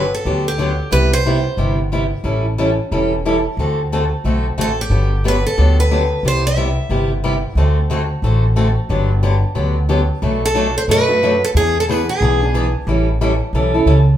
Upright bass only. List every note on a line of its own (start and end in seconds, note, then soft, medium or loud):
0.00 0.13 G1 medium
0.25 0.79 D2 medium
0.92 1.45 C2 medium
1.57 2.11 G1 medium
2.24 2.78 A1 medium
2.91 3.45 E1 medium
3.57 4.11 D2 medium
4.24 4.53 B1 medium
4.58 4.86 A1 medium
4.90 5.44 G1 medium
5.58 6.11 D2 medium
6.23 6.77 C2 medium
6.89 7.43 G1 medium
7.55 8.09 D2 medium
8.22 8.76 A1 medium
8.89 9.42 G1 medium
9.55 10.09 D2 medium
10.22 10.75 B1 medium
10.88 11.41 F#2 medium
11.54 12.08 E2 medium
12.21 12.74 B1 medium
12.87 13.40 A1 medium
13.53 13.81 B1 medium
13.86 14.14 C#2 medium